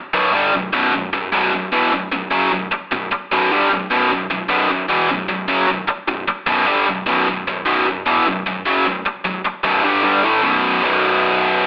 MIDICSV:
0, 0, Header, 1, 3, 480
1, 0, Start_track
1, 0, Key_signature, 2, "minor"
1, 0, Tempo, 395778
1, 1609, Time_signature, 4, 2, 24, 8
1, 14150, End_track
2, 0, Start_track
2, 0, Title_t, "Distorted electric guitar"
2, 0, Program_c, 0, 30
2, 165, Note_on_c, 0, 35, 86
2, 165, Note_on_c, 0, 42, 86
2, 173, Note_on_c, 0, 47, 98
2, 398, Note_off_c, 0, 35, 0
2, 398, Note_off_c, 0, 42, 0
2, 402, Note_off_c, 0, 47, 0
2, 405, Note_on_c, 0, 43, 87
2, 411, Note_on_c, 0, 50, 85
2, 416, Note_on_c, 0, 55, 103
2, 638, Note_off_c, 0, 43, 0
2, 641, Note_off_c, 0, 50, 0
2, 644, Note_off_c, 0, 55, 0
2, 646, Note_on_c, 0, 35, 64
2, 651, Note_on_c, 0, 42, 67
2, 838, Note_off_c, 0, 35, 0
2, 841, Note_off_c, 0, 42, 0
2, 880, Note_on_c, 0, 35, 86
2, 884, Note_on_c, 0, 42, 92
2, 895, Note_on_c, 0, 47, 100
2, 1099, Note_off_c, 0, 35, 0
2, 1108, Note_off_c, 0, 42, 0
2, 1113, Note_on_c, 0, 35, 63
2, 1122, Note_on_c, 0, 42, 70
2, 1124, Note_off_c, 0, 47, 0
2, 1313, Note_off_c, 0, 35, 0
2, 1317, Note_off_c, 0, 42, 0
2, 1370, Note_on_c, 0, 35, 67
2, 1382, Note_on_c, 0, 42, 68
2, 1562, Note_off_c, 0, 35, 0
2, 1568, Note_off_c, 0, 42, 0
2, 1607, Note_on_c, 0, 35, 84
2, 1612, Note_on_c, 0, 42, 94
2, 1616, Note_on_c, 0, 47, 102
2, 1822, Note_off_c, 0, 35, 0
2, 1832, Note_off_c, 0, 42, 0
2, 1837, Note_on_c, 0, 35, 57
2, 1846, Note_off_c, 0, 47, 0
2, 1847, Note_on_c, 0, 42, 69
2, 2036, Note_off_c, 0, 35, 0
2, 2041, Note_off_c, 0, 42, 0
2, 2089, Note_on_c, 0, 40, 82
2, 2095, Note_on_c, 0, 47, 93
2, 2103, Note_on_c, 0, 52, 86
2, 2323, Note_off_c, 0, 40, 0
2, 2326, Note_off_c, 0, 47, 0
2, 2327, Note_on_c, 0, 35, 69
2, 2330, Note_off_c, 0, 52, 0
2, 2339, Note_on_c, 0, 42, 74
2, 2522, Note_off_c, 0, 35, 0
2, 2528, Note_off_c, 0, 42, 0
2, 2569, Note_on_c, 0, 35, 58
2, 2572, Note_on_c, 0, 42, 75
2, 2763, Note_off_c, 0, 35, 0
2, 2765, Note_off_c, 0, 42, 0
2, 2800, Note_on_c, 0, 42, 83
2, 2809, Note_on_c, 0, 54, 92
2, 2810, Note_on_c, 0, 49, 96
2, 3037, Note_off_c, 0, 42, 0
2, 3044, Note_off_c, 0, 54, 0
2, 3045, Note_off_c, 0, 49, 0
2, 3051, Note_on_c, 0, 42, 69
2, 3052, Note_on_c, 0, 35, 61
2, 3245, Note_off_c, 0, 42, 0
2, 3246, Note_off_c, 0, 35, 0
2, 3533, Note_on_c, 0, 35, 60
2, 3544, Note_on_c, 0, 42, 72
2, 3727, Note_off_c, 0, 35, 0
2, 3732, Note_off_c, 0, 42, 0
2, 4023, Note_on_c, 0, 35, 89
2, 4026, Note_on_c, 0, 42, 83
2, 4036, Note_on_c, 0, 47, 97
2, 4253, Note_off_c, 0, 35, 0
2, 4254, Note_off_c, 0, 42, 0
2, 4259, Note_off_c, 0, 47, 0
2, 4263, Note_on_c, 0, 43, 87
2, 4268, Note_on_c, 0, 50, 83
2, 4273, Note_on_c, 0, 55, 97
2, 4490, Note_off_c, 0, 43, 0
2, 4494, Note_off_c, 0, 50, 0
2, 4495, Note_on_c, 0, 35, 63
2, 4498, Note_off_c, 0, 55, 0
2, 4498, Note_on_c, 0, 42, 72
2, 4688, Note_off_c, 0, 35, 0
2, 4690, Note_off_c, 0, 42, 0
2, 4741, Note_on_c, 0, 35, 84
2, 4746, Note_on_c, 0, 42, 88
2, 4752, Note_on_c, 0, 47, 89
2, 4962, Note_off_c, 0, 35, 0
2, 4972, Note_off_c, 0, 42, 0
2, 4976, Note_on_c, 0, 35, 57
2, 4978, Note_off_c, 0, 47, 0
2, 4987, Note_on_c, 0, 42, 71
2, 5169, Note_off_c, 0, 35, 0
2, 5175, Note_off_c, 0, 42, 0
2, 5222, Note_on_c, 0, 35, 62
2, 5224, Note_on_c, 0, 42, 72
2, 5412, Note_off_c, 0, 35, 0
2, 5413, Note_off_c, 0, 42, 0
2, 5446, Note_on_c, 0, 35, 87
2, 5460, Note_on_c, 0, 42, 101
2, 5460, Note_on_c, 0, 47, 103
2, 5685, Note_off_c, 0, 35, 0
2, 5687, Note_off_c, 0, 42, 0
2, 5692, Note_off_c, 0, 47, 0
2, 5697, Note_on_c, 0, 35, 60
2, 5701, Note_on_c, 0, 42, 73
2, 5890, Note_off_c, 0, 35, 0
2, 5892, Note_off_c, 0, 42, 0
2, 5930, Note_on_c, 0, 40, 88
2, 5938, Note_on_c, 0, 47, 88
2, 5946, Note_on_c, 0, 52, 84
2, 6167, Note_off_c, 0, 40, 0
2, 6171, Note_off_c, 0, 47, 0
2, 6175, Note_off_c, 0, 52, 0
2, 6186, Note_on_c, 0, 35, 59
2, 6188, Note_on_c, 0, 42, 69
2, 6374, Note_off_c, 0, 35, 0
2, 6375, Note_off_c, 0, 42, 0
2, 6406, Note_on_c, 0, 35, 67
2, 6411, Note_on_c, 0, 42, 64
2, 6604, Note_off_c, 0, 35, 0
2, 6607, Note_off_c, 0, 42, 0
2, 6645, Note_on_c, 0, 42, 84
2, 6655, Note_on_c, 0, 49, 90
2, 6661, Note_on_c, 0, 54, 86
2, 6879, Note_off_c, 0, 42, 0
2, 6886, Note_on_c, 0, 35, 60
2, 6889, Note_off_c, 0, 49, 0
2, 6893, Note_off_c, 0, 54, 0
2, 6894, Note_on_c, 0, 42, 72
2, 7084, Note_off_c, 0, 35, 0
2, 7088, Note_off_c, 0, 42, 0
2, 7373, Note_on_c, 0, 35, 61
2, 7377, Note_on_c, 0, 42, 64
2, 7568, Note_off_c, 0, 35, 0
2, 7569, Note_off_c, 0, 42, 0
2, 7841, Note_on_c, 0, 35, 75
2, 7851, Note_on_c, 0, 42, 93
2, 7855, Note_on_c, 0, 47, 89
2, 8074, Note_off_c, 0, 35, 0
2, 8079, Note_on_c, 0, 43, 84
2, 8082, Note_off_c, 0, 42, 0
2, 8087, Note_on_c, 0, 50, 96
2, 8089, Note_off_c, 0, 47, 0
2, 8094, Note_on_c, 0, 55, 98
2, 8321, Note_off_c, 0, 43, 0
2, 8325, Note_off_c, 0, 50, 0
2, 8328, Note_off_c, 0, 55, 0
2, 8332, Note_on_c, 0, 42, 69
2, 8334, Note_on_c, 0, 35, 62
2, 8526, Note_off_c, 0, 42, 0
2, 8527, Note_off_c, 0, 35, 0
2, 8564, Note_on_c, 0, 35, 94
2, 8576, Note_on_c, 0, 42, 92
2, 8580, Note_on_c, 0, 47, 94
2, 8803, Note_off_c, 0, 35, 0
2, 8809, Note_off_c, 0, 42, 0
2, 8811, Note_off_c, 0, 47, 0
2, 8821, Note_on_c, 0, 35, 64
2, 8826, Note_on_c, 0, 42, 76
2, 9010, Note_off_c, 0, 35, 0
2, 9013, Note_off_c, 0, 42, 0
2, 9064, Note_on_c, 0, 35, 62
2, 9072, Note_on_c, 0, 42, 74
2, 9252, Note_off_c, 0, 35, 0
2, 9256, Note_off_c, 0, 42, 0
2, 9285, Note_on_c, 0, 35, 97
2, 9292, Note_on_c, 0, 42, 103
2, 9299, Note_on_c, 0, 47, 93
2, 9516, Note_off_c, 0, 42, 0
2, 9519, Note_off_c, 0, 35, 0
2, 9530, Note_off_c, 0, 47, 0
2, 9531, Note_on_c, 0, 42, 69
2, 9534, Note_on_c, 0, 35, 59
2, 9724, Note_off_c, 0, 42, 0
2, 9726, Note_off_c, 0, 35, 0
2, 9774, Note_on_c, 0, 40, 81
2, 9778, Note_on_c, 0, 47, 92
2, 9785, Note_on_c, 0, 52, 96
2, 10006, Note_off_c, 0, 40, 0
2, 10009, Note_off_c, 0, 47, 0
2, 10012, Note_off_c, 0, 52, 0
2, 10025, Note_on_c, 0, 35, 60
2, 10029, Note_on_c, 0, 42, 68
2, 10211, Note_off_c, 0, 35, 0
2, 10213, Note_off_c, 0, 42, 0
2, 10260, Note_on_c, 0, 35, 62
2, 10267, Note_on_c, 0, 42, 72
2, 10449, Note_off_c, 0, 35, 0
2, 10452, Note_off_c, 0, 42, 0
2, 10496, Note_on_c, 0, 42, 85
2, 10503, Note_on_c, 0, 49, 102
2, 10505, Note_on_c, 0, 54, 96
2, 10727, Note_off_c, 0, 42, 0
2, 10730, Note_off_c, 0, 49, 0
2, 10731, Note_off_c, 0, 54, 0
2, 10743, Note_on_c, 0, 35, 63
2, 10748, Note_on_c, 0, 42, 71
2, 10929, Note_off_c, 0, 35, 0
2, 10932, Note_off_c, 0, 42, 0
2, 11212, Note_on_c, 0, 35, 65
2, 11219, Note_on_c, 0, 42, 75
2, 11403, Note_off_c, 0, 35, 0
2, 11407, Note_off_c, 0, 42, 0
2, 11687, Note_on_c, 0, 35, 75
2, 11695, Note_on_c, 0, 42, 89
2, 11705, Note_on_c, 0, 47, 90
2, 11916, Note_off_c, 0, 35, 0
2, 11920, Note_on_c, 0, 43, 87
2, 11923, Note_off_c, 0, 42, 0
2, 11928, Note_on_c, 0, 50, 89
2, 11930, Note_off_c, 0, 47, 0
2, 11939, Note_on_c, 0, 55, 94
2, 12154, Note_off_c, 0, 43, 0
2, 12158, Note_off_c, 0, 50, 0
2, 12166, Note_off_c, 0, 55, 0
2, 12168, Note_on_c, 0, 43, 85
2, 12172, Note_on_c, 0, 50, 94
2, 12180, Note_on_c, 0, 55, 106
2, 12400, Note_off_c, 0, 43, 0
2, 12402, Note_off_c, 0, 50, 0
2, 12406, Note_off_c, 0, 55, 0
2, 12414, Note_on_c, 0, 45, 85
2, 12417, Note_on_c, 0, 52, 93
2, 12426, Note_on_c, 0, 57, 96
2, 12640, Note_off_c, 0, 45, 0
2, 12644, Note_off_c, 0, 52, 0
2, 12645, Note_on_c, 0, 35, 96
2, 12649, Note_off_c, 0, 57, 0
2, 12650, Note_on_c, 0, 42, 104
2, 12659, Note_on_c, 0, 47, 104
2, 13100, Note_off_c, 0, 35, 0
2, 13115, Note_on_c, 0, 35, 101
2, 13119, Note_off_c, 0, 42, 0
2, 13124, Note_off_c, 0, 47, 0
2, 13132, Note_on_c, 0, 42, 92
2, 13155, Note_on_c, 0, 47, 102
2, 14150, Note_off_c, 0, 35, 0
2, 14150, Note_off_c, 0, 42, 0
2, 14150, Note_off_c, 0, 47, 0
2, 14150, End_track
3, 0, Start_track
3, 0, Title_t, "Muted distorted electric guitar strokes"
3, 3291, Note_on_c, 9, 29, 56
3, 3413, Note_off_c, 9, 29, 0
3, 3773, Note_on_c, 9, 29, 57
3, 3894, Note_off_c, 9, 29, 0
3, 7134, Note_on_c, 9, 29, 58
3, 7255, Note_off_c, 9, 29, 0
3, 7612, Note_on_c, 9, 29, 60
3, 7733, Note_off_c, 9, 29, 0
3, 10981, Note_on_c, 9, 29, 54
3, 11102, Note_off_c, 9, 29, 0
3, 11457, Note_on_c, 9, 29, 57
3, 11578, Note_off_c, 9, 29, 0
3, 14150, End_track
0, 0, End_of_file